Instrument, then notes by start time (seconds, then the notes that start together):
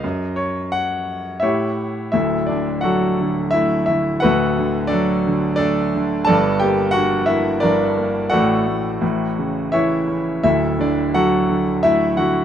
grand piano
Already playing: D#5
0.04 F#2
0.36 C#5
0.72 F#5
1.40 A2 E4 G4 C#5 E5
2.12 D1 D2 E4 A4 E5
2.46 D3 D4 D5
2.81 F#3 F#4 A4 F#5
3.21 D3
3.51 E4 E5
3.56 A3
3.86 E4 E5
3.90 D3
4.20 D1 F#4 A4 B4 F#5
4.24 D2
4.58 D3
4.87 D4 A4 D5
4.93 F#3
5.27 D3
5.56 D4 A4 D5
5.61 A3
5.95 D3
6.25 A4 D5 A5
6.29 G1 G2
6.60 A#3 G4 G5
6.91 F#4 F#5
6.97 D3
7.26 A#3 E4 E5
7.60 G2 D4 A#4 D5
7.98 A#3
8.30 A1 A2 F#4 A4 D5 F#5
8.67 A2
9.01 A1 A2
9.39 C#3
9.72 E3 E4 C#5 E5
10.08 C#4
10.43 D1 D2 E4 A4 E5
10.79 D3 D4 D5
11.14 F#3 F#4 A4 F#5
11.49 D3
11.83 A3 E4 E5
12.17 D3 F#4 F#5